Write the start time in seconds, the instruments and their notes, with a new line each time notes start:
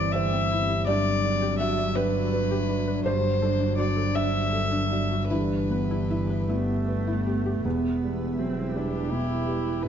Already playing: double bass G1, felt piano G2 E4 G4 B4 C5 D5, cello E3, ambient pad C4 G4 E5, violin D5
0.13 felt piano C5 E5, violin E5
0.33 synth pluck C4
0.51 synth pluck E4, felt piano E4
0.69 synth pluck E4
0.87 felt piano G2 D5, cello F#3, ambient pad D4 F#4 D5, synth pluck G4, violin D5
1.24 felt piano D4, synth pluck D5
1.42 synth pluck G4
1.59 felt piano F#4 E5, violin E5, synth pluck F#5
1.78 synth pluck D5
1.96 felt piano D4 B4, synth pluck G4, violin B4
2.32 felt piano B4
2.51 synth pluck G4
2.68 felt piano D4, synth pluck B4
2.88 synth pluck B4
3.05 double bass G1, felt piano G2 C5, synth pluck D4, violin C5
3.42 felt piano D4, synth pluck A4
3.60 synth pluck D4
3.78 felt piano F#4 D5, synth pluck C5, violin D5
3.97 synth pluck A4
4.15 felt piano D4 E5, synth pluck D4, violin E5
4.53 felt piano A4
4.72 synth pluck D4
4.90 felt piano D4, synth pluck F#4
5.12 synth pluck F#4
5.30 felt piano G2 B4, cello E3, ambient pad B3 G4 E5, synth pluck E4, violin B4
5.70 felt piano B3, synth pluck B4
5.91 synth pluck E4
6.10 felt piano E4, synth pluck E5
6.30 synth pluck B4
6.49 cello A3, felt piano B3, synth pluck E4
6.87 felt piano B4
7.08 synth pluck E4
7.26 felt piano B3, synth pluck G4
7.46 synth pluck G4
7.64 double bass E1, felt piano E2, cello B3, ambient pad E4 B4 E5
8.02 felt piano G3
8.39 felt piano F#3, cello C4
8.74 felt piano G3, cello D4, violin G4
9.11 felt piano B2, cello E4
9.48 felt piano G3
9.82 double bass G1, felt piano G2, cello D4, violin B4, ambient pad D5